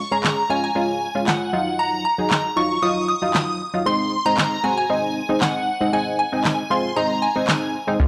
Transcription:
0.12 0.42 G#3 medium
0.12 0.42 C#4 medium
0.12 0.42 G#4 medium
0.12 0.51 A#5 medium
0.24 snare medium
0.24 clap loud
0.50 0.71 G#3 medium
0.50 0.71 C#4 medium
0.50 0.71 F4 medium
0.50 0.56 G#5 medium
0.64 1.24 G#5 medium
0.75 1.07 G#3 medium
0.75 1.07 C#4 medium
0.75 1.07 F4 medium
1.15 1.53 G#3 medium
1.15 1.53 C#4 medium
1.15 1.52 F4 medium
1.27 1.81 F#5 medium
1.27 snare medium
1.27 clap loud
1.53 2.05 F#3 medium
1.53 2.05 D#4 medium
1.53 2.05 F4 medium
1.79 2.04 A#5 loud
2.05 2.53 A#5 medium
2.18 2.49 F#3 medium
2.18 2.49 D#4 medium
2.18 2.49 G#4 medium
2.31 snare medium
2.31 clap loud
2.56 2.77 F#3 medium
2.56 2.78 D#4 medium
2.56 2.78 F4 medium
2.56 2.83 C#6 loud
2.82 3.14 F#3 medium
2.82 3.14 D#4 medium
2.82 3.14 F4 medium
2.82 3.07 D#6 loud
3.08 3.57 D#6 medium
3.22 3.62 F#3 medium
3.22 3.63 D#4 medium
3.22 3.63 F4 medium
3.34 snare medium
3.34 clap loud
3.74 3.83 F#3 medium
3.74 3.84 D#4 medium
3.74 3.84 F4 medium
3.86 4.17 G#3 medium
3.86 4.17 C4 medium
3.86 4.17 D#4 medium
3.86 4.27 C6 loud
4.25 4.56 G#3 medium
4.25 4.56 C4 medium
4.25 4.56 D#4 medium
4.25 4.61 A#5 loud
4.38 snare medium
4.38 clap loud
4.64 4.84 G#3 medium
4.64 4.85 C4 medium
4.64 4.85 F#4 medium
4.64 4.76 G#5 medium
4.77 5.43 G#5 medium
4.89 5.21 G#3 medium
4.89 5.21 C4 medium
4.89 5.21 D#4 medium
5.29 5.69 G#3 medium
5.29 5.69 C4 medium
5.29 5.70 D#4 medium
5.41 5.95 F#5 medium
5.41 snare loud
5.41 clap loud
5.81 5.90 G#3 medium
5.81 5.90 C4 medium
5.81 5.91 D#4 medium
5.93 6.24 G#3 medium
5.93 6.24 C4 medium
5.93 6.24 D#4 medium
5.93 6.05 G#5 medium
6.19 6.72 G#5 medium
6.32 6.63 G#3 medium
6.32 6.63 C4 medium
6.32 6.63 D#4 medium
6.44 snare medium
6.44 clap loud
6.70 6.91 G#3 medium
6.70 6.91 C4 medium
6.70 6.91 F4 medium
6.70 6.95 C6 medium
6.96 7.27 G#3 medium
6.96 7.27 C4 medium
6.96 7.28 D#4 medium
6.96 7.23 A#5 medium
7.22 7.70 G#5 medium
7.36 7.76 G#3 medium
7.36 7.76 C4 medium
7.36 7.76 D#4 medium
7.48 snare loud
7.48 clap loud
7.87 7.97 G#3 medium
7.87 7.97 C4 medium
7.87 7.97 D#4 loud
8.00 8.08 C#2 loud
8.00 8.08 G#3 medium
8.00 8.08 C#4 medium
8.00 8.08 F4 loud

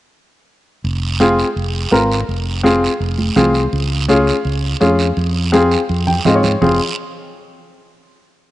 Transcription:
0.84 1.42 F1 medium
0.84 long guiro medium
1.20 1.45 C4 medium
1.20 1.46 F4 medium
1.20 1.46 G#4 medium
1.20 high conga medium
1.20 short guiro medium
1.39 short guiro medium
1.56 1.85 F1 medium
1.56 long guiro medium
1.91 2.21 G#1 medium
1.91 2.17 C4 medium
1.91 2.17 F4 medium
1.91 2.18 A#4 medium
1.91 high conga medium
1.91 short guiro medium
2.11 short guiro medium
2.28 2.86 F1 medium
2.28 long guiro medium
2.63 2.89 C4 medium
2.63 2.89 F4 medium
2.63 2.90 G#4 loud
2.63 high conga medium
2.63 short guiro medium
2.84 short guiro medium
3.00 3.29 F1 medium
3.00 long guiro medium
3.18 high conga medium
3.36 3.66 C2 medium
3.36 3.62 C4 medium
3.36 3.62 F4 medium
3.36 3.62 G#4 medium
3.36 high conga medium
3.36 low conga medium
3.36 short guiro medium
3.54 short guiro medium
3.73 4.31 C#2 loud
3.73 long guiro medium
4.08 4.34 C#4 medium
4.08 4.34 F4 medium
4.08 4.34 G#4 loud
4.08 high conga medium
4.08 short guiro medium
4.27 short guiro medium
4.45 4.74 C#2 medium
4.45 long guiro medium
4.81 5.10 F2 medium
4.81 5.06 C#4 medium
4.81 5.06 F4 medium
4.81 5.06 G#4 medium
4.81 high conga medium
4.81 short guiro medium
4.99 short guiro medium
5.17 5.75 F2 loud
5.17 long guiro medium
5.52 5.78 C4 medium
5.52 5.78 F4 medium
5.52 5.78 G#4 loud
5.52 high conga loud
5.52 short guiro medium
5.71 short guiro medium
5.89 6.18 F2 medium
5.89 long guiro medium
6.07 6.24 G5 medium
6.07 low conga medium
6.25 6.54 G#2 medium
6.25 6.51 C4 medium
6.25 6.51 F4 medium
6.25 6.51 G#4 medium
6.25 6.34 D#5 medium
6.25 low conga medium
6.25 short guiro medium
6.35 6.60 C#5 medium
6.43 low conga medium
6.43 short guiro medium
6.61 6.78 F1 medium
6.61 6.78 C4 medium
6.61 6.78 F4 medium
6.61 6.78 G#4 medium
6.61 low conga medium
6.61 long guiro medium

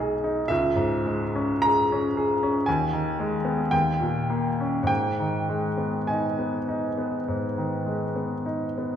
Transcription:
0.00 0.47 B1 soft
0.00 0.53 B2 soft
0.00 0.52 G#3 soft
0.00 0.24 D#4 soft
0.00 0.52 G#4 soft
0.00 0.50 D#5 medium
0.24 0.50 D#4 soft
0.48 2.63 C#2 medium
0.48 1.62 E5 medium
0.76 1.22 G#2 soft
1.06 1.52 G#3 soft
1.35 1.80 C#4 soft
1.62 2.07 G#4 soft
1.62 2.66 A#5 medium
1.92 2.33 C#4 soft
2.17 2.57 G#4 soft
2.43 2.67 C#4 soft
2.66 3.70 D#2 medium
2.66 3.72 G#5 medium
2.93 3.34 D#3 soft
3.19 3.62 G#3 soft
3.45 3.72 B3 soft
3.71 4.86 D#2 medium
3.71 4.85 G5 medium
4.00 4.47 A#2 soft
4.30 4.77 A#3 soft
4.61 4.90 C#4 soft
4.83 7.20 G#2 soft
4.87 6.07 G5 medium
5.20 5.67 D#3 soft
5.49 5.97 G#3 soft
5.77 6.26 B3 soft
6.07 6.57 D#4 soft
6.07 8.45 G#5 medium
6.39 6.86 B3 soft
6.68 7.16 D#4 soft
6.98 7.45 B3 soft
7.28 8.96 G#2 soft
7.58 8.04 D#3 soft
7.86 8.34 G#3 soft
8.16 8.64 B3 soft
8.46 8.95 D#4 soft
8.78 8.96 B3 soft

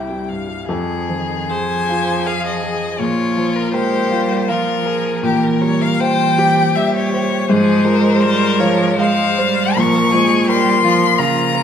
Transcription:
0.00 0.63 C2 medium
0.00 0.10 G3 medium
0.00 0.28 C4 loud
0.00 0.25 E4 medium
0.00 0.70 E4 medium
0.00 0.71 G4 medium
0.00 0.71 E5 medium
0.00 0.30 G5 medium
0.00 0.70 G5 medium
0.10 0.40 G3 medium
0.29 0.60 G2 soft
0.29 0.67 F5 medium
0.49 0.68 G3 soft
0.67 2.98 F2 medium
0.67 1.10 F3 medium
0.67 1.51 G#4 loud
1.08 1.51 D#3 medium
1.08 1.75 F3 medium
1.49 3.00 F3 loud
1.49 2.13 G#4 medium
1.49 2.28 C5 loud
1.49 2.28 G#5 loud
1.89 2.49 F4 medium
2.26 2.99 G#4 medium
2.26 2.86 F5 medium
2.26 2.45 F5 loud
2.46 3.02 D#5 loud
2.64 3.01 G#4 medium
2.99 5.20 A#2 medium
2.99 3.75 F3 medium
2.99 3.75 F4 loud
2.99 3.57 C#5 loud
3.37 3.97 F3 medium
3.56 3.72 A#4 loud
3.72 4.12 G#3 medium
3.72 4.49 G4 loud
3.72 4.34 A#4 medium
3.72 4.50 C5 loud
4.11 4.50 G3 medium
4.11 4.72 F4 medium
4.48 5.25 F3 medium
4.48 4.88 F4 medium
4.48 5.23 A#4 loud
4.48 5.08 F5 medium
4.86 5.26 G#4 medium
4.86 5.24 A#4 medium
5.23 7.44 A#2 medium
5.23 5.99 E3 medium
5.23 5.45 G4 loud
5.23 6.02 A#4 medium
5.43 5.63 A#4 loud
5.61 6.23 G3 medium
5.61 5.83 C#5 loud
5.82 6.02 F5 loud
5.99 6.76 E3 loud
5.99 6.61 C5 medium
5.99 6.40 C5 loud
5.99 6.77 G5 loud
6.38 6.98 G4 medium
6.38 7.48 G4 medium
6.75 7.48 G3 medium
6.75 6.95 E5 loud
6.75 7.35 E5 medium
6.95 7.50 C#5 loud
7.14 7.49 C5 medium
7.49 9.73 G#2 loud
7.49 7.86 F3 loud
7.49 7.86 G#4 loud
7.49 8.23 C5 loud
7.84 8.44 F3 medium
7.84 8.23 G#3 medium
7.84 8.23 A#4 loud
8.21 8.62 G3 loud
8.21 9.02 A#4 loud
8.21 8.83 C5 medium
8.21 8.61 C5 loud
8.60 8.99 F3 loud
8.60 9.23 F4 medium
8.60 8.98 C#5 loud
8.98 9.41 G#3 medium
8.98 9.75 C5 loud
8.98 9.62 F5 medium
8.98 9.80 F5 loud
9.38 9.79 G3 loud
9.38 9.76 C5 medium
9.76 11.63 A#2 loud
9.76 10.15 F3 loud
9.76 10.13 A#4 loud
9.76 10.49 C#6 loud
10.11 10.70 F3 medium
10.11 10.49 G#3 loud
10.11 10.49 G#4 loud
10.47 10.83 G3 loud
10.47 10.82 G4 loud
10.47 11.05 A#4 medium
10.47 11.20 C6 loud
10.83 11.21 F3 loud
10.83 11.18 F4 medium
10.83 11.40 F4 medium
11.18 11.63 C#3 loud
11.18 11.63 F4 medium
11.18 11.63 F5 medium
11.18 11.63 A#5 loud
11.54 11.63 A#4 medium

